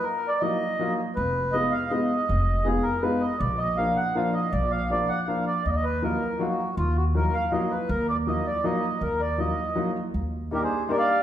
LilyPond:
<<
  \new Staff \with { instrumentName = "Accordion" } { \time 3/4 \key ees \minor \tempo 4 = 161 \tuplet 3/2 { bes'4 d''8 } ees''4. r8 | ces''4 ees''8 f''8 ees''4~ | ees''4 aes'8 bes'8 ces''8 ees''8 | d''8 ees''8 f''8 ges''8 f''8 ees''8 |
d''8 f''8 d''8 ges''8 f''8 d''8 | ees''32 d''32 ees''16 ces''8 bes'4 ges'4 | f'8 ges'8 bes'8 f''8 ees''8 ces''8 | bes'8 d''8 ees''8 d''8 ees''4 |
bes'8 d''8 ees''4. r8 | \key ees \major r4 <g' bes'>16 <aes' c''>8. <bes' d''>16 <d'' f''>8. | }
  \new Staff \with { instrumentName = "Upright piano" } { \time 3/4 \key ees \minor r4 <ges bes ees' f'>8 r8 <ges bes ees' f'>8 r8 | r4 <aes ces' ees' f'>8 r8 <aes ces' ees' f'>8 r8 | r4 <aes ces' ees' f'>8 r8 <aes ces' ees' f'>8 r8 | r4 <f bes d' f'>8 r8 <f bes d' f'>8 r8 |
r4 <f bes d' f'>8 r8 <f bes d' f'>8 r8 | r4 <ges bes ees' f'>8 r8 <ges bes ees' f'>8 r8 | r4 <ges bes ees' f'>8 r8 <ges bes ees' f'>8 r8 | r4 <ges bes ees' f'>8 r8 <ges bes ees' f'>8 r8 |
r4 <ges bes ees' f'>8 r8 <ges bes ees' f'>8 r8 | \key ees \major r4 <g bes d' ees'>8 r8 <g bes d' ees'>8 r8 | }
  \new Staff \with { instrumentName = "Upright bass" } { \clef bass \time 3/4 \key ees \minor r2. | f,,2 r4 | f,,2 r4 | bes,,2 r4 |
bes,,2 r4 | ees,2 r4 | ees,2 r4 | ees,2 r4 |
ees,2 r4 | \key ees \major ees,2 r4 | }
>>